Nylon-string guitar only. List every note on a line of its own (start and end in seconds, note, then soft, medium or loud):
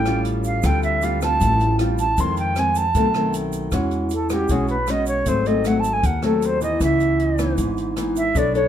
0.00 0.62 A2 medium
0.07 0.61 G3 medium
0.07 0.61 C#4 medium
0.07 0.61 F4 medium
0.65 1.39 D3 medium
0.65 0.99 G3 medium
0.65 1.00 C4 medium
0.65 1.00 F4 medium
1.02 1.18 G3 medium
1.02 1.19 C4 medium
1.02 1.19 F4 medium
1.22 1.76 G3 medium
1.22 1.77 C4 medium
1.22 1.77 F4 medium
1.42 2.16 A2 medium
1.80 2.05 G3 soft
1.80 2.06 C4 medium
1.80 2.06 F4 medium
2.19 2.93 F2 medium
2.19 2.54 D#3 medium
2.19 2.54 G#3 medium
2.19 2.54 C4 medium
2.57 2.83 D#3 medium
2.57 2.83 G#3 medium
2.57 2.83 C4 medium
2.96 3.71 B2 medium
2.96 3.06 D#3 medium
2.96 3.07 A3 medium
2.96 3.07 C4 medium
3.15 3.69 D#3 medium
3.15 3.69 A3 medium
3.15 3.70 C4 medium
3.73 4.48 E3 medium
3.73 4.11 G#3 medium
3.73 4.11 C#4 medium
3.73 4.11 F#4 medium
4.30 4.46 G#3 medium
4.30 4.46 C#4 medium
4.30 4.47 F#4 medium
4.50 5.25 B2 medium
4.50 4.74 G#3 medium
4.50 4.75 C#4 medium
4.50 4.75 F#4 medium
4.88 5.25 G#3 medium
4.88 5.25 C#4 medium
4.88 5.25 F#4 medium
5.26 6.02 G#2 medium
5.26 5.43 F#3 medium
5.26 5.43 A3 medium
5.26 5.43 C4 medium
5.46 5.62 F#3 medium
5.46 5.62 A3 medium
5.46 5.62 C4 medium
5.65 6.03 F#3 medium
5.65 6.04 A3 medium
5.65 6.04 C4 medium
6.04 6.79 D#3 medium
6.23 6.58 F#3 medium
6.23 6.59 A3 medium
6.23 6.59 C4 medium
6.61 7.35 E3 medium
6.61 7.36 B3 medium
6.81 7.56 C#3 medium
7.39 7.93 E3 medium
7.39 7.94 B3 medium
7.39 7.94 D#4 medium
7.59 8.33 G#2 medium
7.97 8.23 E3 medium
7.97 8.23 B3 medium
7.97 8.23 D#4 medium
8.35 8.68 B3 medium
8.35 8.51 D4 medium
8.35 8.51 A4 medium
8.35 8.52 C#5 medium
8.54 8.68 D4 medium
8.54 8.68 A4 medium
8.54 8.68 C#5 medium